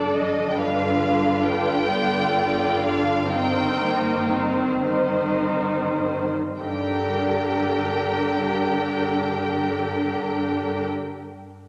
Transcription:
Already playing: G1 G2 D3 F#3 D4 F#4 A4 D5
0.13 F#3 D#5
0.50 G5
0.55 G1 G2 D3 D4 F4 B4 F5
0.99 G3
1.43 F4 G5
1.87 D3 B3 G4 D5
2.34 B3 F4
2.80 G3 D4 F5
3.28 G2 D#3 C4 D#4 C5 G5
3.78 G3 A#3
4.29 C4 D#4
4.83 D#3 C4 D#4 G4 C5
5.40 D#4
6.00 G3
6.58 G1 G2 D3 D4 G4 A#4 G5
6.66 G3
6.74 D4
6.81 A#4
6.87 D5

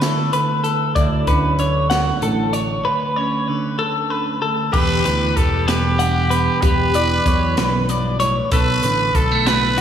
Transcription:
Already playing: D2 D3 B3
0.01 E4 A4, snare, closed hi-hat
0.33 D2 B4, closed hi-hat
0.64 A4, closed hi-hat
0.95 D2 D3 F#3 E4 D5, kick, closed hi-hat
1.27 D2 C#4 B4, kick, closed hi-hat
1.59 D3 C#5, closed hi-hat
1.90 F#4 F#5, snare, closed hi-hat
2.22 A1 A2 A4, closed hi-hat
2.53 C#5, closed hi-hat
2.84 D2 B4
3.16 C#4 C#5
3.48 D3 B4
3.79 A4
4.10 B4
4.42 D2 A4
4.73 E1 E2 G4 B4, kick, crash
5.05 D2 E3 B4, closed hi-hat
5.37 E1 G3 G4 A4, kick, closed hi-hat
5.67 B2 G4 B4, snare, closed hi-hat
5.99 D4 F#5, closed hi-hat
6.30 B3 B4, closed hi-hat
6.61 E1 E2 G4 B4, kick, closed hi-hat
6.94 E3 D5, closed hi-hat
7.26 E2 F#3 C#5, kick, closed hi-hat
7.57 B1 F#2 B4, snare, closed hi-hat
7.88 G2 D5, closed hi-hat
8.20 A2 C#5, closed hi-hat
8.52 B1 B2 A4 B4, kick, closed hi-hat
8.83 A1 D3 B4, closed hi-hat
9.15 B1 F#3 A4, kick, closed hi-hat
9.32 A3
9.46 A2 B4, snare, closed hi-hat
9.78 closed hi-hat

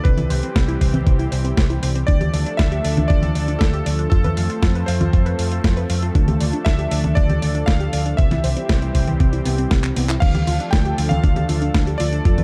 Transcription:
0.04 C2 E3 G3 C4 G4 B4, kick, closed hi-hat
0.18 E4, closed hi-hat, high conga
0.30 C2 C5, open hi-hat
0.43 C4, closed hi-hat
0.56 C2 C4, kick, snare, closed hi-hat
0.68 E4, closed hi-hat
0.81 C2 C5, kick, open hi-hat
0.94 C4, closed hi-hat, high conga
1.06 C2 C4, kick, closed hi-hat
1.19 E4, closed hi-hat
1.32 C2 C5, open hi-hat
1.45 C4, closed hi-hat
1.57 C2 C4, kick, snare, closed hi-hat
1.70 E4, closed hi-hat
1.83 C2 C5, open hi-hat
1.95 C4, closed hi-hat
2.07 D2 F3 A3 D4 A4 D5, kick, closed hi-hat
2.21 G4, closed hi-hat, high conga
2.34 D2 D5, open hi-hat
2.46 D4, closed hi-hat
2.57 D2 D4 E5, kick, snare, closed hi-hat
2.72 G4, closed hi-hat
2.84 D2 D5, open hi-hat
2.97 D4, closed hi-hat, high conga
3.08 D2 D4 D5, kick, closed hi-hat
3.23 G4, closed hi-hat, high conga
3.35 D2 D5, open hi-hat
3.48 D4, closed hi-hat
3.59 D2 D4 A4, kick, snare, closed hi-hat
3.74 G4, closed hi-hat
3.86 D2 D5, open hi-hat
3.99 D4, closed hi-hat
4.10 F2 C4 F4 A4, kick, closed hi-hat
4.24 B4, closed hi-hat, high conga
4.37 F2 F5, open hi-hat
4.50 F4, closed hi-hat
4.63 F2 F4, kick, snare, closed hi-hat
4.75 B4, closed hi-hat
4.86 F2 C5 F5, open hi-hat
5.01 F4, closed hi-hat, high conga
5.13 F2 F4, kick, closed hi-hat
5.26 B4, closed hi-hat
5.39 F2 F5, open hi-hat
5.52 F4, closed hi-hat
5.64 F2 F4, kick, snare, closed hi-hat
5.77 B4, closed hi-hat
5.90 F2 F5, open hi-hat
6.02 F4, closed hi-hat
6.15 D2 D4, kick, closed hi-hat
6.28 G4, closed hi-hat, high conga
6.40 D2 D5, open hi-hat
6.53 D4, closed hi-hat
6.65 D2 D4 E5, kick, snare, closed hi-hat
6.79 G4, closed hi-hat
6.91 D2 D5, open hi-hat
7.04 D4, closed hi-hat, high conga
7.15 D2 D4 D5, kick, closed hi-hat
7.29 G4, closed hi-hat, high conga
7.42 D2 D5, open hi-hat
7.55 D4, closed hi-hat
7.66 D2 D4 F5, kick, snare, closed hi-hat
7.80 G4, closed hi-hat
7.93 D2 D5, open hi-hat
8.06 D4, closed hi-hat
8.17 C2 E3 G3 C4 G4 E5, kick, closed hi-hat
8.31 E4, snare, closed hi-hat, high conga
8.44 C2 C5, open hi-hat
8.57 C4, closed hi-hat
8.69 C2 C4, kick, snare, closed hi-hat
8.82 E4, closed hi-hat
8.95 C2 C5, kick, open hi-hat
9.07 C4, closed hi-hat, high conga
9.20 C2 C4, kick, closed hi-hat
9.33 E4, closed hi-hat
9.46 C2 B3, open hi-hat
9.58 C4, closed hi-hat
9.71 C2 C4, kick, snare, closed hi-hat
9.84 C4, clap, closed hi-hat
9.96 C2 B3, open hi-hat
10.09 E4, clap
10.20 D2 F3 A3 D4 A4 F5, kick, closed hi-hat, crash
10.35 G4, closed hi-hat, high conga
10.47 D2 F4, open hi-hat
10.60 D4, closed hi-hat
10.71 D2 D4 G5, kick, snare, closed hi-hat
10.85 G4, closed hi-hat
10.98 D2 F4, open hi-hat
11.09 D4 F5, closed hi-hat, high conga
11.24 D2 D4, kick, closed hi-hat
11.36 G4, closed hi-hat, high conga
11.49 D2 F4, open hi-hat
11.62 D4, closed hi-hat
11.74 D2 D4, kick, snare, closed hi-hat
11.87 G4, closed hi-hat
11.98 D2 F4 D5, open hi-hat
12.12 D4, closed hi-hat
12.25 F2 F3 C4 F4, kick, closed hi-hat
12.38 B4, closed hi-hat, high conga

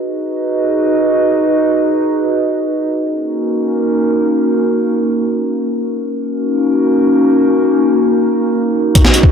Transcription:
0.01 D#4 F#4 G#4 B4 D#5
2.99 A#3 C#4 D#4 F#4 A#4
5.97 A#3 C#4 D#4 F#4 A#4
8.95 kick, closed hi-hat
9.05 snare
9.14 closed hi-hat
9.23 D#4 F#4 G#4 B4 D#5, kick

